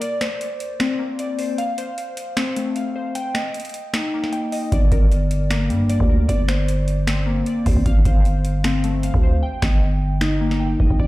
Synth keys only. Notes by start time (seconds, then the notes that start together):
0.01 D5
0.21 C5
0.80 C4
0.99 A#3
1.20 D5
1.39 C5
1.58 F5
1.78 C5
2.37 C4
2.57 A3
2.76 F5
2.96 C5
3.15 G5
3.35 D#5
3.94 D#4
4.14 A#3
4.33 G5
4.52 D#5
4.72 D5
4.92 A#4
5.51 A#3
5.70 G3
5.90 D5
6.10 A#4
6.28 D5
6.48 C5
7.08 C4
7.26 A#3
7.47 D5
7.66 C5
7.86 F5
8.06 C5
8.65 C4
8.84 A3
9.04 F5
9.23 C5
9.43 G5
9.62 D#5
10.21 D#4
10.41 A#3
10.60 G5
10.80 D#5
11.00 D5